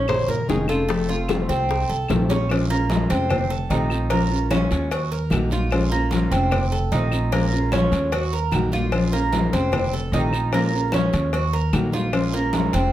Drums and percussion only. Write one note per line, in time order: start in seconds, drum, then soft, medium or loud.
0.08 high bongo medium
0.08 high conga soft
0.08 low conga medium
0.08 long guiro medium
0.08 claves medium
0.28 high conga soft
0.28 low conga medium
0.48 high bongo soft
0.48 low bongo medium
0.48 high conga soft
0.48 short guiro medium
0.68 high bongo soft
0.68 short guiro medium
0.68 claves medium
0.89 high bongo medium
0.89 long guiro medium
1.09 high bongo soft
1.09 high conga soft
1.28 high bongo medium
1.28 high conga loud
1.28 short guiro medium
1.28 claves medium
1.49 high bongo soft
1.49 high conga soft
1.49 short guiro medium
1.69 high bongo medium
1.69 high conga soft
1.69 long guiro medium
1.89 high conga soft
2.08 high bongo soft
2.08 low bongo medium
2.08 high conga medium
2.08 short guiro medium
2.08 claves medium
2.29 high bongo medium
2.29 high conga medium
2.29 short guiro medium
2.49 cowbell loud
2.49 high conga soft
2.49 long guiro medium
2.49 claves medium
2.70 high conga soft
2.90 cowbell medium
2.90 high conga loud
2.90 short guiro medium
3.10 cowbell medium
3.10 high conga soft
3.10 short guiro medium
3.30 cowbell loud
3.30 high conga soft
3.30 low conga medium
3.30 long guiro medium
3.30 claves medium
3.50 high conga soft
3.71 cowbell medium
3.71 short guiro medium
3.90 high conga soft
3.90 short guiro medium
3.90 claves medium
4.10 cowbell loud
4.10 high conga soft
4.10 long guiro medium
4.30 high conga soft
4.51 cowbell medium
4.51 high conga loud
4.51 short guiro medium
4.51 claves medium
4.71 cowbell medium
4.71 high conga soft
4.71 short guiro medium
4.91 cowbell loud
4.91 high conga soft
4.91 long guiro medium
5.11 high conga soft
5.30 cowbell medium
5.30 high conga medium
5.30 short guiro medium
5.30 claves medium
5.50 high conga medium
5.50 short guiro medium
5.70 cowbell loud
5.70 high conga soft
5.70 long guiro medium
5.70 claves medium
5.91 high conga soft
6.11 cowbell medium
6.11 high conga loud
6.11 short guiro medium
6.31 cowbell medium
6.31 high conga soft
6.31 short guiro medium
6.51 cowbell loud
6.51 high conga soft
6.51 low conga medium
6.51 long guiro medium
6.51 claves medium
6.71 high conga soft
6.91 cowbell medium
6.91 high conga soft
6.91 short guiro medium
7.12 high conga soft
7.12 short guiro medium
7.12 claves medium
7.32 cowbell loud
7.32 high conga soft
7.32 long guiro medium
7.72 cowbell medium
7.72 high conga loud
7.72 short guiro medium
7.72 claves medium
7.92 cowbell medium
7.92 high conga soft
7.92 short guiro medium
8.12 cowbell loud
8.12 high conga soft
8.12 long guiro medium
8.33 high conga soft
8.52 cowbell medium
8.52 high conga medium
8.52 short guiro medium
8.52 claves medium
8.72 high conga medium
8.72 short guiro medium
8.92 cowbell loud
8.92 long guiro medium
8.92 claves medium
9.32 cowbell medium
9.32 high conga loud
9.32 short guiro medium
9.53 cowbell medium
9.53 high conga soft
9.53 short guiro medium
9.72 cowbell loud
9.72 high conga soft
9.72 low conga medium
9.72 long guiro medium
9.72 claves medium
9.92 high conga soft
10.13 cowbell medium
10.13 high conga soft
10.13 short guiro medium
10.32 high conga soft
10.32 short guiro medium
10.32 claves medium
10.52 cowbell loud
10.52 high conga soft
10.52 long guiro medium
10.72 high conga soft
10.92 cowbell medium
10.92 high conga loud
10.92 short guiro medium
10.92 claves medium
11.12 cowbell medium
11.12 high conga soft
11.12 short guiro medium
11.32 cowbell loud
11.32 high conga soft
11.32 long guiro medium
11.53 high conga soft
11.73 cowbell medium
11.73 high conga medium
11.73 short guiro medium
11.73 claves medium
11.92 high conga medium
11.92 short guiro medium
12.13 cowbell loud
12.13 high conga soft
12.13 long guiro medium
12.13 claves medium
12.33 high conga soft
12.53 cowbell medium
12.53 high conga loud
12.53 short guiro medium
12.73 cowbell medium
12.73 high conga soft
12.73 short guiro medium